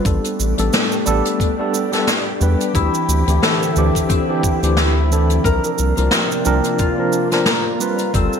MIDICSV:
0, 0, Header, 1, 6, 480
1, 0, Start_track
1, 0, Key_signature, -1, "minor"
1, 0, Tempo, 674157
1, 40, Time_signature, 4, 2, 24, 8
1, 5979, End_track
2, 0, Start_track
2, 0, Title_t, "Harp"
2, 0, Program_c, 0, 46
2, 1955, Note_on_c, 0, 64, 78
2, 2436, Note_on_c, 0, 69, 69
2, 2911, Note_on_c, 0, 60, 73
2, 3391, Note_off_c, 0, 64, 0
2, 3394, Note_on_c, 0, 64, 71
2, 3877, Note_on_c, 0, 70, 77
2, 3920, Note_off_c, 0, 69, 0
2, 4357, Note_off_c, 0, 60, 0
2, 4360, Note_on_c, 0, 60, 74
2, 4836, Note_on_c, 0, 65, 75
2, 4879, Note_off_c, 0, 64, 0
2, 5312, Note_off_c, 0, 70, 0
2, 5315, Note_on_c, 0, 70, 76
2, 5796, Note_off_c, 0, 60, 0
2, 5799, Note_on_c, 0, 60, 77
2, 5979, Note_off_c, 0, 60, 0
2, 5979, Note_off_c, 0, 65, 0
2, 5979, Note_off_c, 0, 70, 0
2, 5979, End_track
3, 0, Start_track
3, 0, Title_t, "Tine electric piano"
3, 0, Program_c, 1, 4
3, 32, Note_on_c, 1, 55, 69
3, 36, Note_on_c, 1, 59, 62
3, 39, Note_on_c, 1, 62, 67
3, 45, Note_on_c, 1, 69, 79
3, 379, Note_off_c, 1, 55, 0
3, 381, Note_off_c, 1, 59, 0
3, 383, Note_off_c, 1, 62, 0
3, 386, Note_off_c, 1, 69, 0
3, 410, Note_on_c, 1, 55, 71
3, 418, Note_on_c, 1, 59, 66
3, 420, Note_on_c, 1, 62, 65
3, 423, Note_on_c, 1, 69, 87
3, 732, Note_off_c, 1, 55, 0
3, 736, Note_off_c, 1, 59, 0
3, 737, Note_off_c, 1, 62, 0
3, 738, Note_off_c, 1, 69, 0
3, 752, Note_on_c, 1, 55, 93
3, 756, Note_on_c, 1, 59, 75
3, 760, Note_on_c, 1, 62, 83
3, 765, Note_on_c, 1, 69, 103
3, 1099, Note_off_c, 1, 55, 0
3, 1101, Note_off_c, 1, 59, 0
3, 1104, Note_off_c, 1, 62, 0
3, 1106, Note_off_c, 1, 69, 0
3, 1131, Note_on_c, 1, 55, 82
3, 1136, Note_on_c, 1, 59, 78
3, 1142, Note_on_c, 1, 62, 75
3, 1144, Note_on_c, 1, 69, 90
3, 1341, Note_off_c, 1, 55, 0
3, 1343, Note_off_c, 1, 59, 0
3, 1346, Note_off_c, 1, 62, 0
3, 1347, Note_off_c, 1, 69, 0
3, 1367, Note_on_c, 1, 55, 83
3, 1369, Note_on_c, 1, 59, 77
3, 1376, Note_on_c, 1, 62, 80
3, 1380, Note_on_c, 1, 69, 93
3, 1489, Note_off_c, 1, 55, 0
3, 1490, Note_off_c, 1, 59, 0
3, 1493, Note_off_c, 1, 62, 0
3, 1495, Note_off_c, 1, 69, 0
3, 1711, Note_on_c, 1, 55, 82
3, 1717, Note_on_c, 1, 59, 69
3, 1721, Note_on_c, 1, 62, 70
3, 1727, Note_on_c, 1, 71, 84
3, 1930, Note_off_c, 1, 55, 0
3, 1934, Note_off_c, 1, 59, 0
3, 1936, Note_off_c, 1, 62, 0
3, 1939, Note_off_c, 1, 71, 0
3, 1947, Note_on_c, 1, 52, 70
3, 1952, Note_on_c, 1, 60, 65
3, 1959, Note_on_c, 1, 62, 65
3, 1963, Note_on_c, 1, 67, 82
3, 2297, Note_off_c, 1, 52, 0
3, 2300, Note_off_c, 1, 60, 0
3, 2303, Note_off_c, 1, 62, 0
3, 2305, Note_off_c, 1, 67, 0
3, 2333, Note_on_c, 1, 52, 71
3, 2337, Note_on_c, 1, 60, 66
3, 2340, Note_on_c, 1, 62, 68
3, 2347, Note_on_c, 1, 67, 79
3, 2653, Note_off_c, 1, 52, 0
3, 2655, Note_off_c, 1, 60, 0
3, 2657, Note_off_c, 1, 62, 0
3, 2661, Note_off_c, 1, 67, 0
3, 2678, Note_on_c, 1, 52, 82
3, 2685, Note_on_c, 1, 60, 82
3, 2687, Note_on_c, 1, 62, 75
3, 2693, Note_on_c, 1, 67, 90
3, 3022, Note_off_c, 1, 52, 0
3, 3026, Note_off_c, 1, 60, 0
3, 3027, Note_off_c, 1, 62, 0
3, 3030, Note_off_c, 1, 67, 0
3, 3053, Note_on_c, 1, 52, 83
3, 3057, Note_on_c, 1, 60, 71
3, 3060, Note_on_c, 1, 62, 81
3, 3067, Note_on_c, 1, 67, 90
3, 3262, Note_off_c, 1, 52, 0
3, 3264, Note_off_c, 1, 60, 0
3, 3265, Note_off_c, 1, 62, 0
3, 3269, Note_off_c, 1, 67, 0
3, 3292, Note_on_c, 1, 52, 83
3, 3296, Note_on_c, 1, 60, 78
3, 3303, Note_on_c, 1, 62, 77
3, 3305, Note_on_c, 1, 67, 91
3, 3411, Note_off_c, 1, 52, 0
3, 3413, Note_off_c, 1, 60, 0
3, 3417, Note_off_c, 1, 62, 0
3, 3417, Note_off_c, 1, 67, 0
3, 3640, Note_on_c, 1, 52, 78
3, 3642, Note_on_c, 1, 60, 69
3, 3648, Note_on_c, 1, 62, 74
3, 3651, Note_on_c, 1, 69, 85
3, 3855, Note_off_c, 1, 52, 0
3, 3856, Note_off_c, 1, 60, 0
3, 3859, Note_off_c, 1, 62, 0
3, 3861, Note_off_c, 1, 69, 0
3, 3879, Note_on_c, 1, 53, 68
3, 3884, Note_on_c, 1, 60, 64
3, 3885, Note_on_c, 1, 62, 62
3, 3893, Note_on_c, 1, 70, 83
3, 4223, Note_off_c, 1, 53, 0
3, 4225, Note_off_c, 1, 60, 0
3, 4226, Note_off_c, 1, 62, 0
3, 4230, Note_off_c, 1, 70, 0
3, 4249, Note_on_c, 1, 53, 76
3, 4257, Note_on_c, 1, 60, 69
3, 4260, Note_on_c, 1, 62, 67
3, 4264, Note_on_c, 1, 70, 79
3, 4572, Note_off_c, 1, 53, 0
3, 4576, Note_off_c, 1, 60, 0
3, 4577, Note_off_c, 1, 62, 0
3, 4579, Note_off_c, 1, 70, 0
3, 4594, Note_on_c, 1, 53, 94
3, 4598, Note_on_c, 1, 60, 81
3, 4601, Note_on_c, 1, 62, 84
3, 4604, Note_on_c, 1, 70, 97
3, 4940, Note_off_c, 1, 53, 0
3, 4942, Note_off_c, 1, 60, 0
3, 4944, Note_off_c, 1, 62, 0
3, 4945, Note_off_c, 1, 70, 0
3, 4972, Note_on_c, 1, 53, 85
3, 4977, Note_on_c, 1, 60, 77
3, 4982, Note_on_c, 1, 62, 75
3, 4984, Note_on_c, 1, 70, 87
3, 5182, Note_off_c, 1, 53, 0
3, 5184, Note_off_c, 1, 60, 0
3, 5186, Note_off_c, 1, 62, 0
3, 5187, Note_off_c, 1, 70, 0
3, 5210, Note_on_c, 1, 53, 88
3, 5212, Note_on_c, 1, 60, 80
3, 5219, Note_on_c, 1, 62, 77
3, 5221, Note_on_c, 1, 70, 95
3, 5330, Note_off_c, 1, 53, 0
3, 5331, Note_off_c, 1, 60, 0
3, 5334, Note_off_c, 1, 62, 0
3, 5336, Note_off_c, 1, 70, 0
3, 5553, Note_on_c, 1, 55, 81
3, 5556, Note_on_c, 1, 60, 75
3, 5561, Note_on_c, 1, 65, 73
3, 5564, Note_on_c, 1, 71, 89
3, 5771, Note_off_c, 1, 55, 0
3, 5773, Note_off_c, 1, 60, 0
3, 5776, Note_off_c, 1, 65, 0
3, 5777, Note_off_c, 1, 71, 0
3, 5795, Note_on_c, 1, 55, 76
3, 5803, Note_on_c, 1, 60, 66
3, 5807, Note_on_c, 1, 65, 67
3, 5811, Note_on_c, 1, 69, 82
3, 5979, Note_off_c, 1, 55, 0
3, 5979, Note_off_c, 1, 60, 0
3, 5979, Note_off_c, 1, 65, 0
3, 5979, Note_off_c, 1, 69, 0
3, 5979, End_track
4, 0, Start_track
4, 0, Title_t, "String machine"
4, 0, Program_c, 2, 50
4, 35, Note_on_c, 2, 67, 81
4, 36, Note_on_c, 2, 57, 72
4, 37, Note_on_c, 2, 62, 69
4, 1939, Note_off_c, 2, 57, 0
4, 1939, Note_off_c, 2, 62, 0
4, 1955, Note_on_c, 2, 64, 62
4, 1959, Note_on_c, 2, 50, 70
4, 1959, Note_on_c, 2, 60, 66
4, 3849, Note_off_c, 2, 67, 0
4, 3858, Note_off_c, 2, 64, 0
4, 3860, Note_off_c, 2, 60, 0
4, 3861, Note_off_c, 2, 50, 0
4, 3877, Note_on_c, 2, 62, 68
4, 3879, Note_on_c, 2, 58, 64
4, 3880, Note_on_c, 2, 48, 75
4, 3882, Note_on_c, 2, 65, 80
4, 5542, Note_off_c, 2, 62, 0
4, 5543, Note_off_c, 2, 48, 0
4, 5543, Note_off_c, 2, 58, 0
4, 5557, Note_on_c, 2, 55, 77
4, 5561, Note_on_c, 2, 60, 73
4, 5979, Note_off_c, 2, 55, 0
4, 5979, Note_off_c, 2, 60, 0
4, 5979, Note_off_c, 2, 65, 0
4, 5979, End_track
5, 0, Start_track
5, 0, Title_t, "Analog synth bass"
5, 0, Program_c, 3, 38
5, 38, Note_on_c, 3, 33, 99
5, 143, Note_off_c, 3, 33, 0
5, 283, Note_on_c, 3, 33, 76
5, 385, Note_off_c, 3, 33, 0
5, 420, Note_on_c, 3, 33, 88
5, 497, Note_off_c, 3, 33, 0
5, 763, Note_on_c, 3, 33, 84
5, 865, Note_off_c, 3, 33, 0
5, 1717, Note_on_c, 3, 40, 101
5, 1822, Note_off_c, 3, 40, 0
5, 1957, Note_on_c, 3, 38, 103
5, 2062, Note_off_c, 3, 38, 0
5, 2198, Note_on_c, 3, 38, 82
5, 2303, Note_off_c, 3, 38, 0
5, 2333, Note_on_c, 3, 38, 94
5, 2413, Note_off_c, 3, 38, 0
5, 2681, Note_on_c, 3, 38, 88
5, 2784, Note_off_c, 3, 38, 0
5, 3296, Note_on_c, 3, 38, 81
5, 3840, Note_off_c, 3, 38, 0
5, 3878, Note_on_c, 3, 36, 100
5, 3983, Note_off_c, 3, 36, 0
5, 4123, Note_on_c, 3, 36, 78
5, 4225, Note_off_c, 3, 36, 0
5, 4259, Note_on_c, 3, 36, 90
5, 4337, Note_off_c, 3, 36, 0
5, 4602, Note_on_c, 3, 36, 84
5, 4705, Note_off_c, 3, 36, 0
5, 5798, Note_on_c, 3, 31, 100
5, 5903, Note_off_c, 3, 31, 0
5, 5979, End_track
6, 0, Start_track
6, 0, Title_t, "Drums"
6, 36, Note_on_c, 9, 36, 116
6, 38, Note_on_c, 9, 42, 66
6, 39, Note_on_c, 9, 69, 56
6, 107, Note_off_c, 9, 36, 0
6, 110, Note_off_c, 9, 42, 0
6, 110, Note_off_c, 9, 69, 0
6, 172, Note_on_c, 9, 42, 47
6, 179, Note_on_c, 9, 69, 45
6, 243, Note_off_c, 9, 42, 0
6, 251, Note_off_c, 9, 69, 0
6, 283, Note_on_c, 9, 69, 76
6, 354, Note_off_c, 9, 69, 0
6, 412, Note_on_c, 9, 42, 64
6, 419, Note_on_c, 9, 69, 52
6, 483, Note_off_c, 9, 42, 0
6, 490, Note_off_c, 9, 69, 0
6, 519, Note_on_c, 9, 69, 56
6, 521, Note_on_c, 9, 42, 60
6, 523, Note_on_c, 9, 38, 94
6, 590, Note_off_c, 9, 69, 0
6, 593, Note_off_c, 9, 42, 0
6, 595, Note_off_c, 9, 38, 0
6, 654, Note_on_c, 9, 69, 49
6, 725, Note_off_c, 9, 69, 0
6, 757, Note_on_c, 9, 69, 74
6, 828, Note_off_c, 9, 69, 0
6, 891, Note_on_c, 9, 42, 61
6, 899, Note_on_c, 9, 69, 53
6, 962, Note_off_c, 9, 42, 0
6, 970, Note_off_c, 9, 69, 0
6, 996, Note_on_c, 9, 36, 114
6, 1000, Note_on_c, 9, 42, 57
6, 1001, Note_on_c, 9, 69, 53
6, 1067, Note_off_c, 9, 36, 0
6, 1071, Note_off_c, 9, 42, 0
6, 1072, Note_off_c, 9, 69, 0
6, 1240, Note_on_c, 9, 69, 81
6, 1311, Note_off_c, 9, 69, 0
6, 1373, Note_on_c, 9, 42, 60
6, 1373, Note_on_c, 9, 69, 46
6, 1375, Note_on_c, 9, 38, 29
6, 1445, Note_off_c, 9, 42, 0
6, 1445, Note_off_c, 9, 69, 0
6, 1447, Note_off_c, 9, 38, 0
6, 1475, Note_on_c, 9, 38, 81
6, 1475, Note_on_c, 9, 42, 54
6, 1481, Note_on_c, 9, 69, 59
6, 1546, Note_off_c, 9, 38, 0
6, 1546, Note_off_c, 9, 42, 0
6, 1552, Note_off_c, 9, 69, 0
6, 1717, Note_on_c, 9, 69, 72
6, 1788, Note_off_c, 9, 69, 0
6, 1855, Note_on_c, 9, 42, 55
6, 1857, Note_on_c, 9, 69, 47
6, 1926, Note_off_c, 9, 42, 0
6, 1929, Note_off_c, 9, 69, 0
6, 1956, Note_on_c, 9, 36, 110
6, 1956, Note_on_c, 9, 42, 62
6, 1958, Note_on_c, 9, 69, 59
6, 2027, Note_off_c, 9, 36, 0
6, 2027, Note_off_c, 9, 42, 0
6, 2029, Note_off_c, 9, 69, 0
6, 2096, Note_on_c, 9, 69, 42
6, 2167, Note_off_c, 9, 69, 0
6, 2201, Note_on_c, 9, 69, 82
6, 2272, Note_off_c, 9, 69, 0
6, 2332, Note_on_c, 9, 42, 59
6, 2340, Note_on_c, 9, 69, 48
6, 2403, Note_off_c, 9, 42, 0
6, 2411, Note_off_c, 9, 69, 0
6, 2441, Note_on_c, 9, 38, 87
6, 2443, Note_on_c, 9, 42, 62
6, 2444, Note_on_c, 9, 69, 51
6, 2512, Note_off_c, 9, 38, 0
6, 2515, Note_off_c, 9, 42, 0
6, 2515, Note_off_c, 9, 69, 0
6, 2582, Note_on_c, 9, 69, 48
6, 2653, Note_off_c, 9, 69, 0
6, 2678, Note_on_c, 9, 69, 75
6, 2749, Note_off_c, 9, 69, 0
6, 2813, Note_on_c, 9, 36, 56
6, 2817, Note_on_c, 9, 42, 51
6, 2820, Note_on_c, 9, 69, 54
6, 2884, Note_off_c, 9, 36, 0
6, 2888, Note_off_c, 9, 42, 0
6, 2892, Note_off_c, 9, 69, 0
6, 2915, Note_on_c, 9, 42, 67
6, 2918, Note_on_c, 9, 36, 108
6, 2919, Note_on_c, 9, 69, 62
6, 2986, Note_off_c, 9, 42, 0
6, 2989, Note_off_c, 9, 36, 0
6, 2990, Note_off_c, 9, 69, 0
6, 3157, Note_on_c, 9, 36, 105
6, 3161, Note_on_c, 9, 69, 80
6, 3228, Note_off_c, 9, 36, 0
6, 3232, Note_off_c, 9, 69, 0
6, 3298, Note_on_c, 9, 42, 59
6, 3299, Note_on_c, 9, 69, 49
6, 3370, Note_off_c, 9, 42, 0
6, 3370, Note_off_c, 9, 69, 0
6, 3394, Note_on_c, 9, 38, 80
6, 3400, Note_on_c, 9, 42, 54
6, 3402, Note_on_c, 9, 69, 50
6, 3465, Note_off_c, 9, 38, 0
6, 3471, Note_off_c, 9, 42, 0
6, 3473, Note_off_c, 9, 69, 0
6, 3646, Note_on_c, 9, 69, 81
6, 3717, Note_off_c, 9, 69, 0
6, 3771, Note_on_c, 9, 42, 53
6, 3778, Note_on_c, 9, 69, 40
6, 3842, Note_off_c, 9, 42, 0
6, 3849, Note_off_c, 9, 69, 0
6, 3876, Note_on_c, 9, 36, 109
6, 3880, Note_on_c, 9, 42, 69
6, 3883, Note_on_c, 9, 69, 60
6, 3947, Note_off_c, 9, 36, 0
6, 3951, Note_off_c, 9, 42, 0
6, 3954, Note_off_c, 9, 69, 0
6, 4016, Note_on_c, 9, 69, 41
6, 4088, Note_off_c, 9, 69, 0
6, 4117, Note_on_c, 9, 69, 79
6, 4189, Note_off_c, 9, 69, 0
6, 4253, Note_on_c, 9, 69, 52
6, 4255, Note_on_c, 9, 42, 52
6, 4324, Note_off_c, 9, 69, 0
6, 4326, Note_off_c, 9, 42, 0
6, 4350, Note_on_c, 9, 38, 105
6, 4355, Note_on_c, 9, 42, 63
6, 4361, Note_on_c, 9, 69, 59
6, 4421, Note_off_c, 9, 38, 0
6, 4427, Note_off_c, 9, 42, 0
6, 4432, Note_off_c, 9, 69, 0
6, 4496, Note_on_c, 9, 69, 39
6, 4567, Note_off_c, 9, 69, 0
6, 4593, Note_on_c, 9, 69, 75
6, 4664, Note_off_c, 9, 69, 0
6, 4729, Note_on_c, 9, 42, 56
6, 4730, Note_on_c, 9, 69, 54
6, 4800, Note_off_c, 9, 42, 0
6, 4801, Note_off_c, 9, 69, 0
6, 4832, Note_on_c, 9, 69, 59
6, 4836, Note_on_c, 9, 36, 103
6, 4837, Note_on_c, 9, 42, 56
6, 4904, Note_off_c, 9, 69, 0
6, 4907, Note_off_c, 9, 36, 0
6, 4908, Note_off_c, 9, 42, 0
6, 5073, Note_on_c, 9, 69, 76
6, 5144, Note_off_c, 9, 69, 0
6, 5208, Note_on_c, 9, 42, 55
6, 5211, Note_on_c, 9, 38, 29
6, 5212, Note_on_c, 9, 69, 46
6, 5279, Note_off_c, 9, 42, 0
6, 5283, Note_off_c, 9, 38, 0
6, 5283, Note_off_c, 9, 69, 0
6, 5309, Note_on_c, 9, 38, 84
6, 5310, Note_on_c, 9, 42, 60
6, 5314, Note_on_c, 9, 69, 52
6, 5381, Note_off_c, 9, 38, 0
6, 5381, Note_off_c, 9, 42, 0
6, 5385, Note_off_c, 9, 69, 0
6, 5558, Note_on_c, 9, 69, 78
6, 5629, Note_off_c, 9, 69, 0
6, 5686, Note_on_c, 9, 69, 51
6, 5689, Note_on_c, 9, 42, 49
6, 5757, Note_off_c, 9, 69, 0
6, 5760, Note_off_c, 9, 42, 0
6, 5796, Note_on_c, 9, 36, 105
6, 5796, Note_on_c, 9, 42, 66
6, 5797, Note_on_c, 9, 69, 51
6, 5867, Note_off_c, 9, 36, 0
6, 5867, Note_off_c, 9, 42, 0
6, 5868, Note_off_c, 9, 69, 0
6, 5930, Note_on_c, 9, 69, 43
6, 5979, Note_off_c, 9, 69, 0
6, 5979, End_track
0, 0, End_of_file